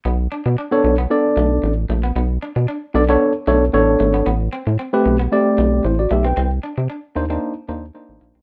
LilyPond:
<<
  \new Staff \with { instrumentName = "Tine electric piano" } { \time 4/4 \key b \phrygian \tempo 4 = 114 << { r1 | r1 | r2. <e' c''>16 <fis' d''>16 <g' e''>16 <b' g''>16~ | <b' g''>16 r2. r8. | } \\ { r4 r16 <b d' a' cis''>8 r16 <b d' a' d''>4~ <b d' a' d''>16 r8. | r4. <b d' a' d''>16 <b d' a' cis''>8 r16 <b d' a' cis''>16 r16 <b d' a' cis''>4 | r4 r16 <a c' g' b'>8 r16 <a c' g' d''>4~ <a c' g' d''>16 r8. | r4. <bes d' ees' c''>16 <bes d' ees' c''>8 r16 <bes d' ees' c''>16 r16 <bes d' ees' c''>4 | } >> }
  \new Staff \with { instrumentName = "Clean electric guitar" } { \time 4/4 \key b \phrygian b16 r16 d'16 r16 d'16 r8 b16 r8 a16 r8. a16 b16 | b16 r16 d'16 r16 d'16 r8 b16 r8 a16 r8. a16 b16 | b16 r16 c'16 r16 c'16 r8 b16 r8 a16 r8. a16 c'16 | c'16 r16 d'16 r16 d'16 r8 c'16 r8 bes16 r8. bes16 c'16 | }
  \new Staff \with { instrumentName = "Analog synth bass" } { \clef bass \time 4/4 \key b \phrygian b,,8 r16 b,16 r8 b,,8 r8 b,,8 a,,8 ais,,8 | b,,8 r16 b,16 r8 b,,8 r8 b,,8 a,,8 gis,,8 | a,,8 r16 a,16 r8 b,,8 r8 b,,8 a,,8 b,,8 | c,8 r16 c16 r8 ees,8 r8 ees,8 r16 a,,16 bes,,16 b,,16 | }
>>